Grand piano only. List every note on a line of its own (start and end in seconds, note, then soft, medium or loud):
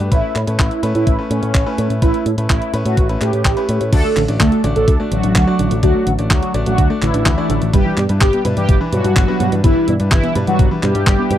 0.12 0.32 A3 medium
0.12 0.32 C#4 medium
0.12 0.32 E4 medium
0.12 0.32 B4 loud
0.47 0.80 A3 medium
0.47 0.80 C#4 medium
0.47 0.80 E4 medium
0.47 0.80 B4 medium
0.83 1.16 A3 medium
0.83 1.16 C#4 medium
0.83 1.16 E4 medium
0.83 1.16 B4 loud
1.19 1.63 A3 medium
1.19 1.63 C#4 medium
1.19 1.63 E4 medium
1.19 1.63 B4 medium
1.66 1.99 A3 medium
1.66 1.99 C#4 medium
1.66 1.99 E4 medium
1.66 1.99 B4 loud
2.02 2.22 A3 medium
2.02 2.22 C#4 medium
2.02 2.22 E4 medium
2.02 2.22 B4 medium
2.38 2.71 A3 medium
2.38 2.71 C#4 medium
2.38 2.71 E4 medium
2.38 2.71 B4 medium
2.73 3.06 A3 medium
2.73 3.06 C#4 medium
2.73 3.06 E4 medium
2.73 3.06 B4 loud
3.09 3.54 A3 medium
3.09 3.54 C#4 medium
3.09 3.54 E4 medium
3.09 3.54 B4 medium
3.57 3.90 A3 medium
3.57 3.90 C#4 medium
3.57 3.90 E4 medium
3.57 3.90 B4 loud
3.93 4.13 A3 medium
3.93 4.13 D4 medium
3.93 4.13 F#4 medium
3.93 4.13 D5 medium
4.28 4.61 A3 medium
4.28 4.61 D4 medium
4.28 4.61 F#4 medium
4.28 4.61 D5 medium
4.64 4.97 A3 medium
4.64 4.97 D4 medium
4.64 4.97 F#4 medium
4.64 4.97 D5 loud
5.00 5.45 A3 medium
5.00 5.44 D4 medium
5.00 5.44 F#4 medium
5.00 5.44 D5 loud
5.47 5.80 A3 medium
5.47 5.80 D4 medium
5.47 5.80 F#4 medium
5.47 5.80 D5 loud
5.83 6.03 A3 medium
5.83 6.03 D4 medium
5.83 6.03 F#4 medium
5.83 6.03 D5 medium
6.19 6.52 A3 medium
6.19 6.52 D4 medium
6.19 6.52 F#4 medium
6.19 6.52 D5 medium
6.54 6.87 A3 loud
6.54 6.87 D4 medium
6.54 6.87 F#4 medium
6.54 6.87 D5 loud
6.90 7.35 A3 medium
6.90 7.35 D4 medium
6.90 7.35 F#4 medium
6.90 7.35 D5 loud
7.38 7.71 A3 loud
7.38 7.71 D4 medium
7.38 7.71 F#4 medium
7.38 7.71 D5 loud
7.73 7.94 G3 medium
7.73 7.94 D4 medium
7.73 7.94 E4 medium
7.73 7.94 B4 loud
8.09 8.42 G3 medium
8.09 8.42 D4 medium
8.09 8.42 E4 medium
8.09 8.42 B4 medium
8.45 8.78 G3 medium
8.45 8.78 D4 medium
8.45 8.78 E4 medium
8.45 8.78 B4 loud
8.81 9.25 E3 medium
8.81 9.25 D4 medium
8.81 9.25 E4 medium
8.81 9.25 B4 loud
9.28 9.61 G3 medium
9.28 9.61 D4 medium
9.28 9.61 E4 medium
9.28 9.61 B4 loud
9.64 9.84 G3 medium
9.64 9.84 D4 medium
9.64 9.84 E4 medium
9.64 9.84 B4 loud
10.00 10.33 G3 medium
10.00 10.33 D4 medium
10.00 10.33 E4 medium
10.00 10.33 B4 medium
10.35 10.68 G3 medium
10.35 10.68 D4 medium
10.35 10.68 E4 medium
10.35 10.68 B4 loud
10.71 10.81 G3 medium
10.71 10.81 D4 medium
10.71 10.81 E4 medium
10.71 10.81 B4 loud
10.83 11.16 G3 medium
10.83 11.16 D4 medium
10.83 11.16 E4 medium
10.83 11.16 B4 medium
11.19 11.38 G3 medium
11.19 11.38 D4 medium
11.19 11.38 E4 medium
11.19 11.38 B4 medium